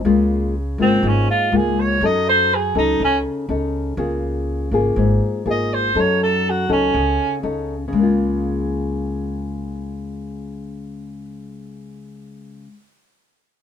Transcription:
0.05 upright bass C#2, nylon-string guitar C#3 G#3 A#3 F4
0.78 upright bass G#1, nylon-string guitar G#3 A#3 F4, alto saxophone C4
1.03 upright bass G#1, nylon-string guitar G#2
1.08 alto saxophone C#4
1.30 alto saxophone F4
1.52 upright bass C#2, nylon-string guitar G#3 A#3 F4
1.56 alto saxophone G#4
1.80 alto saxophone C#5
2.01 upright bass F#2, nylon-string guitar F#3 C#4 D#4 A4
2.06 alto saxophone D#5
2.29 alto saxophone C5
2.55 alto saxophone G#4
2.75 upright bass C#2, nylon-string guitar C#4 D#4 A4, alto saxophone D#4
3.00 upright bass C#2, nylon-string guitar C#3
3.05 alto saxophone C#4
3.49 upright bass C#2, nylon-string guitar C#4 D#4 A4
3.97 upright bass C#2, nylon-string guitar C#3 A#3 F4 G#4
4.71 upright bass G#1, nylon-string guitar A#3 F4 G#4
4.96 upright bass G#1, nylon-string guitar G#2
5.46 upright bass G#1, nylon-string guitar A#3 F4 G#4
5.51 alto saxophone D#5
5.74 alto saxophone C5
5.95 upright bass F#2, nylon-string guitar F#3 C#4 D#4 A4
6.00 alto saxophone C#5
6.23 alto saxophone A4
6.50 alto saxophone F#4
6.69 upright bass C#2, nylon-string guitar C#4 D#4 A4, alto saxophone C#4
6.94 upright bass C#2, nylon-string guitar C#3
7.43 upright bass C#2, nylon-string guitar C#4 D#4 A4
7.88 nylon-string guitar C#3
7.93 upright bass C#2, nylon-string guitar G#3
7.99 nylon-string guitar A#3
8.03 nylon-string guitar F4

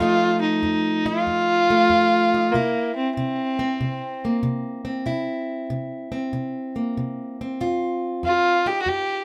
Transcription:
0.00 steel-string acoustic guitar F2 F3 A3 D#4, fiddle F4
0.41 fiddle D#4
0.63 steel-string acoustic guitar F2
1.06 steel-string acoustic guitar D#4, fiddle F4
1.27 steel-string acoustic guitar F2
1.70 steel-string acoustic guitar A3
1.90 steel-string acoustic guitar F2
2.34 steel-string acoustic guitar D#4
2.51 steel-string acoustic guitar C3 E4, fiddle A#3
2.96 fiddle C4
3.15 steel-string acoustic guitar C3, fiddle C4
3.59 steel-string acoustic guitar C4
3.81 steel-string acoustic guitar C3
4.25 steel-string acoustic guitar A#3
4.43 steel-string acoustic guitar C3
4.85 steel-string acoustic guitar C4
5.06 steel-string acoustic guitar C3 E4
5.70 steel-string acoustic guitar C3
6.12 steel-string acoustic guitar C4
6.33 steel-string acoustic guitar C3
6.76 steel-string acoustic guitar A#3
6.97 steel-string acoustic guitar C3
7.41 steel-string acoustic guitar C4
7.61 steel-string acoustic guitar F2 F4
8.23 steel-string acoustic guitar F2, fiddle F4
8.66 steel-string acoustic guitar D#4, fiddle G4
8.82 fiddle F#4
8.86 steel-string acoustic guitar F2, fiddle G4

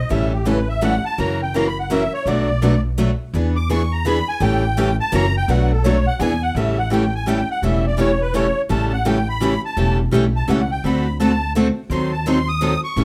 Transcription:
0.09 upright bass A1, steel-string acoustic guitar C#3 E3 G3 A3 C#4 E4 G4 A4, accordion E5
0.33 accordion G4
0.45 steel-string acoustic guitar C#3 E3 G3 A3 C#4 E4 G4 A4, accordion B4
0.69 accordion E5
0.81 steel-string acoustic guitar C#3 E3 G3 A3 C#4 E4 G4 A4, accordion F#5
1.05 accordion A5
1.18 upright bass F#1, steel-string acoustic guitar C#3 E3 F#3 A#3 C#4 E4 F#4 A#4, accordion A#5
1.42 accordion G5
1.54 steel-string acoustic guitar C#3 E3 F#3 A#3 C#4 E4 F#4 A#4, accordion A#5
1.67 accordion B5
1.79 accordion F#5
1.90 steel-string acoustic guitar C#3 E3 F#3 A#3 C#4 E4 F#4 A#4, accordion E5
2.14 accordion C#5
2.26 upright bass B1, steel-string acoustic guitar B2 F#3 A3 D4 F#4 B4, accordion D5
2.62 steel-string acoustic guitar B2 F#3 A3 D4 F#4 B4
2.98 steel-string acoustic guitar B2 F#3 A3 D4 F#4 B4
3.33 upright bass E2, steel-string acoustic guitar E3 B3 D4 G#4 B4
3.56 accordion D6
3.70 steel-string acoustic guitar E3 B3 D4 G#4 B4, accordion C#6
3.92 accordion A#5
4.05 steel-string acoustic guitar E3 B3 D4 G#4 B4, accordion B5
4.28 accordion G#5
4.40 upright bass A1, steel-string acoustic guitar C#3 E3 G3 A3 C#4 E4 G4 A4, accordion G5
4.77 steel-string acoustic guitar C#3 E3 G3 A3 C#4 E4 G4 A4
5.00 accordion A5
5.12 upright bass F#1, steel-string acoustic guitar C#3 E3 F#3 A#3 C#4 E4 F#4 A#4, accordion A#5
5.37 accordion G5
5.48 upright bass B1, steel-string acoustic guitar B2 F#3 A3 D4 F#4 B4, accordion F#5
5.72 accordion A4
5.84 steel-string acoustic guitar B2 F#3 A3 D4 F#4 B4, accordion C#5
6.07 accordion F#5
6.20 upright bass E2, steel-string acoustic guitar E3 B3 D4 G#4 B4, accordion G#5
6.43 accordion F#5
6.55 upright bass A1, steel-string acoustic guitar C#3 E3 G3 A3 C#4 E4 G4 A4, accordion E5
6.78 accordion F#5
6.90 steel-string acoustic guitar C#3 E3 G3 A3 C#4 E4 G4 A4, accordion G5
7.15 accordion G#5
7.26 steel-string acoustic guitar C#3 E3 G3 A3 C#4 E4 G4 A4, accordion G5
7.51 accordion F#5
7.62 upright bass E1, steel-string acoustic guitar C#3 E3 G3 A3 C#4 E4 G4 A4, accordion E5
7.87 accordion D5
7.97 steel-string acoustic guitar C#3 E3 G3 A3 C#4 E4 G4 A4, accordion C#5
8.21 accordion B4
8.34 steel-string acoustic guitar C#3 E3 G3 A3 C#4 E4 G4 A4, accordion C#5
8.69 upright bass A1, steel-string acoustic guitar C#3 E3 G3 A3 C#4 E4 G4 A4, accordion A5
8.93 accordion F#5
9.05 steel-string acoustic guitar C#3 E3 G3 A3 C#4 E4 G4 A4, accordion G5
9.29 accordion B5
9.40 steel-string acoustic guitar C#3 E3 G3 A3 C#4 E4 G4 A4
9.65 accordion A5
9.77 upright bass E1, steel-string acoustic guitar C#3 E3 G3 A3 C#4 E4 G4 A4
10.11 upright bass B1, steel-string acoustic guitar C#3 E3 G3 A3 C#4 E4 G4 A4
10.36 accordion A5
10.48 upright bass C#2, steel-string acoustic guitar C#3 E3 G3 A3 C#4 E4 G4 A4, accordion F#5
10.71 accordion G5
10.84 upright bass D2, steel-string acoustic guitar D3 A3 C4 F#4 A4, accordion B5
11.20 steel-string acoustic guitar D3 A3 C4 F#4 A4, accordion A5
11.55 steel-string acoustic guitar D3 A3 C4 F#4 A4
11.90 upright bass D#2, steel-string acoustic guitar D#3 F#3 C4 D#4 A4, accordion C6
12.13 accordion A5
12.26 steel-string acoustic guitar D#3 F#3 C4 D#4 A4, accordion C6
12.48 accordion D#6
12.61 steel-string acoustic guitar D#3 F#3 C4 D#4 A4
12.84 accordion C#6
12.96 upright bass A1, steel-string acoustic guitar C#3 E3 G3 A3 C#4 E4 G4 A4

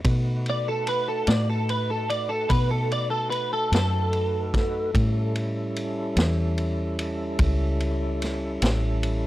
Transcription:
0.05 fingered electric bass B2, tonewheel organ A3 D#4 F#4 B4, kick, ride
0.46 clean electric guitar D5, ride
0.68 clean electric guitar A4
0.87 clean electric guitar B4, ride
1.08 clean electric guitar A4
1.27 fingered electric bass A2, clean electric guitar D5, snare, ride
1.50 clean electric guitar A4
1.69 clean electric guitar B4, ride
1.90 clean electric guitar A4
2.10 clean electric guitar D5, ride
2.29 clean electric guitar A4
2.49 fingered electric bass B2, clean electric guitar B4, kick, ride
2.71 clean electric guitar A4
2.91 clean electric guitar D5, ride
3.10 clean electric guitar A4
3.30 clean electric guitar B4, ride
3.53 clean electric guitar A4
3.72 fingered electric bass F#2, clean electric guitar A4, snare, ride
4.13 ride
4.54 kick, snare, ride
4.93 fingered electric bass A2, tonewheel organ G3 C#4 E4 A4, kick, ride
5.35 ride
5.76 ride
6.16 fingered electric bass E2, snare, ride
6.58 ride
6.99 ride
7.39 fingered electric bass C#2, kick, ride
7.80 ride
8.22 snare, ride
8.62 fingered electric bass A1, snare, ride
9.03 ride

